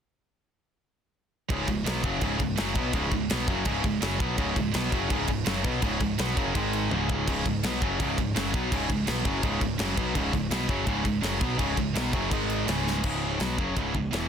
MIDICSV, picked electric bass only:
0, 0, Header, 1, 2, 480
1, 0, Start_track
1, 0, Tempo, 360577
1, 2003, Time_signature, 4, 2, 24, 8
1, 19015, End_track
2, 0, Start_track
2, 0, Title_t, "Picked electric bass"
2, 0, Program_c, 0, 34
2, 1996, Note_on_c, 0, 25, 96
2, 2223, Note_off_c, 0, 25, 0
2, 2229, Note_on_c, 0, 25, 81
2, 2459, Note_off_c, 0, 25, 0
2, 2486, Note_on_c, 0, 35, 99
2, 2702, Note_off_c, 0, 35, 0
2, 2710, Note_on_c, 0, 30, 88
2, 2939, Note_off_c, 0, 30, 0
2, 2948, Note_on_c, 0, 25, 97
2, 3178, Note_off_c, 0, 25, 0
2, 3193, Note_on_c, 0, 25, 80
2, 3421, Note_off_c, 0, 25, 0
2, 3452, Note_on_c, 0, 30, 95
2, 3663, Note_off_c, 0, 30, 0
2, 3671, Note_on_c, 0, 35, 102
2, 3892, Note_off_c, 0, 35, 0
2, 3900, Note_on_c, 0, 25, 101
2, 4134, Note_off_c, 0, 25, 0
2, 4144, Note_on_c, 0, 25, 81
2, 4376, Note_off_c, 0, 25, 0
2, 4409, Note_on_c, 0, 35, 97
2, 4620, Note_off_c, 0, 35, 0
2, 4628, Note_on_c, 0, 30, 87
2, 4858, Note_off_c, 0, 30, 0
2, 4875, Note_on_c, 0, 25, 87
2, 5102, Note_off_c, 0, 25, 0
2, 5111, Note_on_c, 0, 25, 81
2, 5340, Note_off_c, 0, 25, 0
2, 5348, Note_on_c, 0, 30, 95
2, 5578, Note_off_c, 0, 30, 0
2, 5589, Note_on_c, 0, 35, 93
2, 5819, Note_off_c, 0, 35, 0
2, 5828, Note_on_c, 0, 25, 92
2, 6058, Note_off_c, 0, 25, 0
2, 6065, Note_on_c, 0, 25, 77
2, 6296, Note_off_c, 0, 25, 0
2, 6312, Note_on_c, 0, 35, 104
2, 6540, Note_off_c, 0, 35, 0
2, 6556, Note_on_c, 0, 30, 92
2, 6782, Note_off_c, 0, 30, 0
2, 6795, Note_on_c, 0, 25, 95
2, 7022, Note_off_c, 0, 25, 0
2, 7036, Note_on_c, 0, 25, 88
2, 7255, Note_off_c, 0, 25, 0
2, 7263, Note_on_c, 0, 30, 94
2, 7495, Note_off_c, 0, 30, 0
2, 7514, Note_on_c, 0, 35, 102
2, 7741, Note_off_c, 0, 35, 0
2, 7752, Note_on_c, 0, 25, 97
2, 7980, Note_off_c, 0, 25, 0
2, 7994, Note_on_c, 0, 25, 80
2, 8221, Note_off_c, 0, 25, 0
2, 8238, Note_on_c, 0, 35, 103
2, 8463, Note_off_c, 0, 35, 0
2, 8482, Note_on_c, 0, 30, 92
2, 8705, Note_off_c, 0, 30, 0
2, 8720, Note_on_c, 0, 32, 91
2, 9168, Note_off_c, 0, 32, 0
2, 9196, Note_on_c, 0, 25, 99
2, 9645, Note_off_c, 0, 25, 0
2, 9689, Note_on_c, 0, 25, 100
2, 9909, Note_off_c, 0, 25, 0
2, 9931, Note_on_c, 0, 25, 81
2, 10150, Note_off_c, 0, 25, 0
2, 10167, Note_on_c, 0, 35, 99
2, 10388, Note_off_c, 0, 35, 0
2, 10414, Note_on_c, 0, 30, 85
2, 10631, Note_off_c, 0, 30, 0
2, 10654, Note_on_c, 0, 25, 102
2, 10872, Note_off_c, 0, 25, 0
2, 10892, Note_on_c, 0, 25, 81
2, 11110, Note_off_c, 0, 25, 0
2, 11122, Note_on_c, 0, 30, 98
2, 11345, Note_off_c, 0, 30, 0
2, 11366, Note_on_c, 0, 35, 96
2, 11587, Note_off_c, 0, 35, 0
2, 11604, Note_on_c, 0, 25, 91
2, 11826, Note_off_c, 0, 25, 0
2, 11842, Note_on_c, 0, 25, 86
2, 12065, Note_off_c, 0, 25, 0
2, 12084, Note_on_c, 0, 35, 104
2, 12306, Note_off_c, 0, 35, 0
2, 12312, Note_on_c, 0, 30, 99
2, 12539, Note_off_c, 0, 30, 0
2, 12555, Note_on_c, 0, 25, 93
2, 12781, Note_off_c, 0, 25, 0
2, 12790, Note_on_c, 0, 25, 86
2, 13018, Note_off_c, 0, 25, 0
2, 13041, Note_on_c, 0, 30, 98
2, 13264, Note_off_c, 0, 30, 0
2, 13281, Note_on_c, 0, 35, 97
2, 13504, Note_off_c, 0, 35, 0
2, 13521, Note_on_c, 0, 25, 93
2, 13744, Note_off_c, 0, 25, 0
2, 13754, Note_on_c, 0, 25, 81
2, 13974, Note_off_c, 0, 25, 0
2, 13982, Note_on_c, 0, 35, 106
2, 14213, Note_off_c, 0, 35, 0
2, 14228, Note_on_c, 0, 30, 89
2, 14457, Note_off_c, 0, 30, 0
2, 14467, Note_on_c, 0, 25, 95
2, 14696, Note_off_c, 0, 25, 0
2, 14711, Note_on_c, 0, 25, 76
2, 14926, Note_off_c, 0, 25, 0
2, 14934, Note_on_c, 0, 30, 97
2, 15169, Note_off_c, 0, 30, 0
2, 15182, Note_on_c, 0, 35, 104
2, 15413, Note_off_c, 0, 35, 0
2, 15433, Note_on_c, 0, 25, 101
2, 15659, Note_off_c, 0, 25, 0
2, 15676, Note_on_c, 0, 25, 85
2, 15893, Note_off_c, 0, 25, 0
2, 15901, Note_on_c, 0, 35, 100
2, 16132, Note_off_c, 0, 35, 0
2, 16153, Note_on_c, 0, 30, 96
2, 16379, Note_off_c, 0, 30, 0
2, 16398, Note_on_c, 0, 32, 96
2, 16845, Note_off_c, 0, 32, 0
2, 16870, Note_on_c, 0, 25, 91
2, 17321, Note_off_c, 0, 25, 0
2, 17358, Note_on_c, 0, 25, 81
2, 17806, Note_off_c, 0, 25, 0
2, 17840, Note_on_c, 0, 35, 93
2, 18064, Note_off_c, 0, 35, 0
2, 18087, Note_on_c, 0, 30, 79
2, 18308, Note_off_c, 0, 30, 0
2, 18322, Note_on_c, 0, 25, 89
2, 18546, Note_off_c, 0, 25, 0
2, 18569, Note_on_c, 0, 25, 79
2, 18789, Note_off_c, 0, 25, 0
2, 18799, Note_on_c, 0, 28, 84
2, 19015, Note_off_c, 0, 28, 0
2, 19015, End_track
0, 0, End_of_file